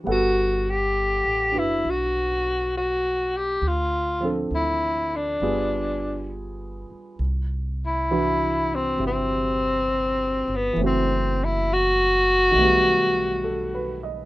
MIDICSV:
0, 0, Header, 1, 5, 480
1, 0, Start_track
1, 0, Key_signature, 1, "major"
1, 0, Tempo, 891530
1, 29, Time_signature, 4, 2, 24, 8
1, 7674, End_track
2, 0, Start_track
2, 0, Title_t, "Tenor saxophone"
2, 0, Program_c, 0, 66
2, 60, Note_on_c, 0, 66, 87
2, 381, Note_on_c, 0, 67, 76
2, 389, Note_off_c, 0, 66, 0
2, 856, Note_on_c, 0, 64, 74
2, 864, Note_off_c, 0, 67, 0
2, 1024, Note_on_c, 0, 66, 77
2, 1032, Note_off_c, 0, 64, 0
2, 1484, Note_off_c, 0, 66, 0
2, 1492, Note_on_c, 0, 66, 72
2, 1814, Note_on_c, 0, 67, 70
2, 1822, Note_off_c, 0, 66, 0
2, 1979, Note_on_c, 0, 65, 77
2, 1987, Note_off_c, 0, 67, 0
2, 2346, Note_off_c, 0, 65, 0
2, 2448, Note_on_c, 0, 64, 76
2, 2777, Note_on_c, 0, 62, 67
2, 2785, Note_off_c, 0, 64, 0
2, 3406, Note_off_c, 0, 62, 0
2, 4231, Note_on_c, 0, 64, 78
2, 4711, Note_on_c, 0, 60, 67
2, 4719, Note_off_c, 0, 64, 0
2, 4855, Note_off_c, 0, 60, 0
2, 4882, Note_on_c, 0, 60, 82
2, 5684, Note_on_c, 0, 59, 78
2, 5692, Note_off_c, 0, 60, 0
2, 5820, Note_off_c, 0, 59, 0
2, 5848, Note_on_c, 0, 60, 76
2, 6160, Note_on_c, 0, 64, 78
2, 6168, Note_off_c, 0, 60, 0
2, 6318, Note_on_c, 0, 66, 102
2, 6326, Note_off_c, 0, 64, 0
2, 7573, Note_off_c, 0, 66, 0
2, 7674, End_track
3, 0, Start_track
3, 0, Title_t, "Grand piano"
3, 0, Program_c, 1, 0
3, 0, Control_c, 1, 64, 127
3, 19, Note_on_c, 1, 55, 43
3, 30, Note_on_c, 1, 59, 39
3, 36, Control_c, 1, 64, 0
3, 37, Note_on_c, 1, 78, 37
3, 46, Note_on_c, 1, 69, 50
3, 139, Control_c, 1, 64, 127
3, 818, Note_on_c, 1, 62, 38
3, 827, Note_on_c, 1, 66, 35
3, 838, Note_on_c, 1, 71, 40
3, 1940, Note_off_c, 1, 55, 0
3, 1940, Note_off_c, 1, 62, 0
3, 1944, Note_off_c, 1, 66, 0
3, 1945, Note_off_c, 1, 59, 0
3, 1949, Note_off_c, 1, 78, 0
3, 1950, Note_off_c, 1, 71, 0
3, 1951, Control_c, 1, 64, 0
3, 1953, Note_off_c, 1, 69, 0
3, 2045, Control_c, 1, 64, 127
3, 2264, Note_on_c, 1, 53, 36
3, 2274, Note_on_c, 1, 60, 35
3, 2284, Note_on_c, 1, 62, 31
3, 2288, Note_on_c, 1, 69, 46
3, 2906, Note_off_c, 1, 53, 0
3, 2911, Note_off_c, 1, 60, 0
3, 2914, Control_c, 1, 64, 0
3, 2916, Note_off_c, 1, 62, 0
3, 2916, Note_on_c, 1, 55, 40
3, 2917, Note_off_c, 1, 69, 0
3, 2917, Note_on_c, 1, 59, 41
3, 2920, Note_on_c, 1, 65, 39
3, 2924, Note_on_c, 1, 68, 50
3, 2998, Control_c, 1, 64, 127
3, 3879, Note_off_c, 1, 55, 0
3, 3880, Note_off_c, 1, 59, 0
3, 3881, Note_off_c, 1, 65, 0
3, 3881, Control_c, 1, 64, 0
3, 3884, Note_off_c, 1, 68, 0
3, 3983, Control_c, 1, 64, 127
3, 4365, Note_on_c, 1, 52, 43
3, 4367, Note_on_c, 1, 71, 39
3, 4369, Note_on_c, 1, 62, 40
3, 4370, Note_on_c, 1, 66, 49
3, 4836, Note_on_c, 1, 48, 32
3, 4846, Note_on_c, 1, 64, 30
3, 4852, Note_on_c, 1, 67, 36
3, 5770, Note_off_c, 1, 52, 0
3, 5778, Note_on_c, 1, 52, 44
3, 5797, Note_off_c, 1, 48, 0
3, 5799, Note_on_c, 1, 57, 37
3, 5802, Note_off_c, 1, 64, 0
3, 5804, Note_off_c, 1, 71, 0
3, 5805, Note_off_c, 1, 62, 0
3, 5805, Note_off_c, 1, 66, 0
3, 5805, Note_off_c, 1, 67, 0
3, 5806, Control_c, 1, 64, 0
3, 5816, Note_on_c, 1, 60, 37
3, 5835, Note_on_c, 1, 66, 46
3, 5916, Control_c, 1, 64, 127
3, 6738, Note_on_c, 1, 51, 42
3, 6744, Note_off_c, 1, 52, 0
3, 6751, Note_off_c, 1, 57, 0
3, 6759, Note_on_c, 1, 57, 37
3, 6761, Control_c, 1, 64, 0
3, 6763, Note_off_c, 1, 60, 0
3, 6773, Note_off_c, 1, 66, 0
3, 6780, Note_on_c, 1, 59, 40
3, 6799, Note_on_c, 1, 55, 53
3, 6869, Control_c, 1, 64, 127
3, 7237, Note_on_c, 1, 69, 41
3, 7401, Note_on_c, 1, 71, 46
3, 7534, Note_off_c, 1, 69, 0
3, 7556, Note_on_c, 1, 75, 39
3, 7644, Note_off_c, 1, 71, 0
3, 7674, Note_off_c, 1, 51, 0
3, 7674, Note_off_c, 1, 55, 0
3, 7674, Note_off_c, 1, 57, 0
3, 7674, Note_off_c, 1, 59, 0
3, 7674, Note_off_c, 1, 75, 0
3, 7674, End_track
4, 0, Start_track
4, 0, Title_t, "Upright bass"
4, 0, Program_c, 2, 32
4, 35, Note_on_c, 2, 31, 68
4, 649, Note_off_c, 2, 31, 0
4, 670, Note_on_c, 2, 33, 54
4, 817, Note_off_c, 2, 33, 0
4, 829, Note_on_c, 2, 30, 61
4, 976, Note_off_c, 2, 30, 0
4, 996, Note_on_c, 2, 35, 66
4, 1928, Note_off_c, 2, 35, 0
4, 1947, Note_on_c, 2, 38, 68
4, 2405, Note_off_c, 2, 38, 0
4, 2427, Note_on_c, 2, 38, 54
4, 2887, Note_off_c, 2, 38, 0
4, 2909, Note_on_c, 2, 31, 62
4, 3695, Note_off_c, 2, 31, 0
4, 3872, Note_on_c, 2, 36, 70
4, 4817, Note_off_c, 2, 36, 0
4, 4835, Note_on_c, 2, 31, 68
4, 5617, Note_off_c, 2, 31, 0
4, 5641, Note_on_c, 2, 31, 61
4, 5788, Note_off_c, 2, 31, 0
4, 5796, Note_on_c, 2, 30, 77
4, 6731, Note_off_c, 2, 30, 0
4, 6756, Note_on_c, 2, 35, 74
4, 7674, Note_off_c, 2, 35, 0
4, 7674, End_track
5, 0, Start_track
5, 0, Title_t, "Muted upright bass strokes"
5, 3716, Note_on_c, 9, 29, 29
5, 3770, Note_off_c, 9, 29, 0
5, 7674, End_track
0, 0, End_of_file